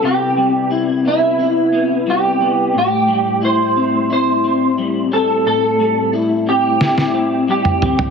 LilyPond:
<<
  \new Staff \with { instrumentName = "Clean electric guitar" } { \time 4/4 \key a \minor \tempo 4 = 89 g'4 r8 e'4. g'4 | g'4 c''4 c''4 r8 a'8 | a'4 r8 g'4. g'4 | }
  \new Staff \with { instrumentName = "Clean electric guitar" } { \time 4/4 \key a \minor <c g b e'>8 g8 e'8 b8 e'8 b8 g8 b8 | a,8 g8 e'8 c'8 e'8 c'8 g8 c'8 | a,8 g8 e'8 c'8 e'8 c'8 g8 c'8 | }
  \new DrumStaff \with { instrumentName = "Drums" } \drummode { \time 4/4 r4 r4 r4 r4 | r4 r4 r4 r4 | r4 r4 sn16 sn8. r16 toml16 tomfh16 tomfh16 | }
>>